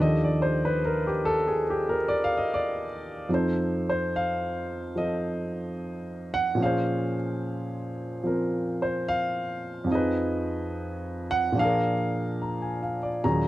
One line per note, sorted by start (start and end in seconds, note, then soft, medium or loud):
0.00 3.27 D#2 soft
0.00 3.28 D#3 soft
0.00 3.28 F3 soft
0.00 3.30 D4 soft
0.00 1.06 G4 soft
0.00 0.27 D#5 medium
0.05 1.24 A4 soft
0.24 0.52 D5 medium
0.42 0.61 C5 medium
0.65 0.79 B4 medium
0.85 1.10 A#4 medium
1.07 1.35 G4 medium
1.25 1.44 A4 medium
1.48 1.62 G#4 medium
1.70 1.94 G4 medium
1.89 2.18 A#4 medium
2.08 2.13 D5 medium
2.24 2.40 F5 medium
2.37 2.46 D#5 medium
2.54 2.85 D5 medium
3.29 6.59 F2 medium
3.29 4.94 F3 medium
3.29 6.60 D#4 soft
3.29 4.96 A4 soft
3.34 3.88 C5 medium
3.90 4.13 C5 medium
4.16 4.92 F5 medium
4.96 6.56 F3 soft
4.96 6.60 C4 soft
4.96 6.61 F4 soft
4.96 6.61 A4 soft
4.96 6.30 D#5 medium
6.34 6.59 F#5 loud
6.55 9.87 A#2 medium
6.55 8.22 F3 medium
6.60 9.90 C#4 soft
6.60 9.91 G#4 soft
6.60 7.15 F5 medium
6.66 8.81 C5 medium
8.24 9.85 F3 soft
8.24 9.90 C4 soft
8.24 9.90 F4 soft
8.24 9.91 A#4 medium
8.82 9.07 C5 medium
9.08 9.86 F5 medium
9.84 11.53 F2 medium
9.84 11.54 F3 medium
9.90 11.56 D#4 medium
9.90 11.57 G#4 soft
9.90 11.26 D#5 medium
9.95 11.58 B4 medium
11.31 11.56 F#5 loud
11.52 13.21 A#2 medium
11.52 13.23 F3 medium
11.57 13.24 D4 medium
11.57 13.24 G#4 medium
11.57 11.92 F5 medium
11.64 13.27 A#4 medium
12.42 12.80 A#5 soft
12.62 12.97 G#5 soft
12.83 13.08 F5 soft
13.03 13.32 D5 medium
13.24 13.48 D#2 soft
13.24 13.48 A#2 soft
13.24 13.48 F#3 soft
13.24 13.48 C#4 soft
13.24 13.48 F#4 soft
13.24 13.48 G#4 medium
13.24 13.48 A#5 medium